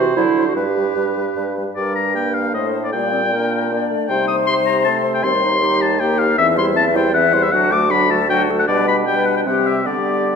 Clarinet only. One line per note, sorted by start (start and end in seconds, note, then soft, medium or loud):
0.00 0.16 F#4 medium
0.16 0.46 E4 medium
0.47 0.56 F#4 medium
0.56 1.54 G4 medium
1.76 2.89 D4 medium
2.93 3.11 A#3 medium
3.12 3.21 C4 medium
3.31 3.70 D4 medium
3.70 4.10 D4 medium
4.09 4.87 D#4 medium
4.86 5.23 C4 medium
5.24 5.33 C4 medium
5.43 5.51 D#4 medium
5.62 5.99 D#4 medium
6.00 6.37 D#4 medium
6.38 6.58 C4 medium
6.57 6.77 E4 medium
6.76 6.96 C4 medium
6.94 7.13 E4 medium
7.14 7.34 C4 medium
7.33 7.52 E4 medium
7.52 7.73 D4 medium
7.72 7.92 F#4 medium
7.91 8.12 D4 medium
8.11 8.29 F#4 medium
8.30 8.51 D4 medium
8.49 8.68 F#4 medium
8.68 9.04 D4 medium
9.07 9.47 D4 medium
9.46 9.87 C4 medium
9.85 10.36 B3 medium